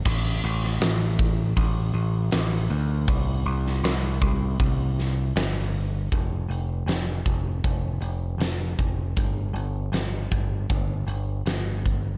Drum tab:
CC |x---------------|----------------|----------------|----------------|
HH |----o---o---o---|o---o---o---o---|x-x-x-x-x-x-x-x-|x-x-x-x-x-x-x-x-|
SD |---oo-------o---|---oo-----o-o---|----o-------o---|----o-------o---|
BD |o-----o-o-------|o-----o-o-------|o-----o-o-----o-|o-----o-o-----o-|